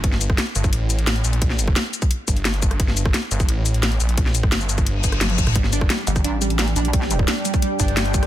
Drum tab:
HH |x-x-x-xxx-xxxxxx|x-x-x-xxx-xxxxxx|x-x-x-xxx-xxxxxx|x-x-x-xxx-xxxxxx|
SH |--x---xx--x---x-|--x---xx--x---x-|--x---xx--x---x-|--x--xxx--x---x-|
SD |-o-ro--r----o---|-o-ro-------o--r|-o-ro--r----o---|-o-ro--r---ro--r|
T1 |----------------|----------------|----------------|------------oo--|
T2 |----------------|----------------|----------------|---------------o|
BD |o--o---o--------|o--o---o--o---o-|o--o---o--------|o--o---o--o---o-|

HH |x-x-x-xxx-xxxxxx|x-x-x-xxx-xxxxxx|
SH |--x---xx--x---x-|--x---xx--x---x-|
SD |-o-ro--r----o---|-o-ro-------o--r|
T1 |----------------|----------------|
T2 |----------------|----------------|
BD |o--o---o--------|o--o---o--o---o-|